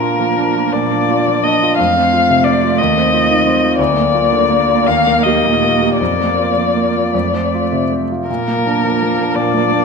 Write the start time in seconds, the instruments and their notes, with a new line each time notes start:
Already playing: grand piano A#2 D4, cello A#3, violin A#4
0.01 grand piano F4
0.19 grand piano F3
0.38 grand piano D4
0.56 grand piano F4
0.73 grand piano A#2, violin D5
0.92 grand piano D4
1.10 grand piano F4
1.28 grand piano F3
1.43 grand piano D4, violin D#5
1.63 grand piano F4
1.78 grand piano F2, cello A3, violin F5
1.96 grand piano C4
2.13 grand piano F4
2.30 grand piano C3
2.44 grand piano C4, violin D5
2.64 grand piano F4
2.78 grand piano D#2, violin D#5
2.97 grand piano C4
3.13 grand piano F4
3.30 grand piano D#3
3.47 grand piano C4
3.63 grand piano F4
3.78 grand piano D2, cello A#3, violin D5
3.97 grand piano A#3
4.14 grand piano F4
4.32 grand piano D3
4.50 grand piano A#3
4.69 grand piano F4
4.86 grand piano D#2, violin F5
5.07 grand piano A#3
5.23 grand piano G4, violin D#5
5.45 grand piano A#2
5.63 grand piano A#3
5.82 grand piano G4
5.99 grand piano F2, violin D5
6.20 grand piano A#3
6.38 grand piano F4
6.57 grand piano F3
6.77 grand piano A#3
6.96 grand piano F4
7.14 grand piano F2, cello A3
7.34 grand piano C4
7.54 grand piano F4
7.72 grand piano C3
7.92 grand piano C4
8.11 grand piano F4
8.28 grand piano A#2, cello A#3, violin A#4
8.48 grand piano A#3
8.66 grand piano D4
8.84 grand piano F3
9.03 grand piano A#3
9.20 grand piano D4
9.35 grand piano A#2, violin D5
9.54 grand piano A#3
9.72 grand piano D4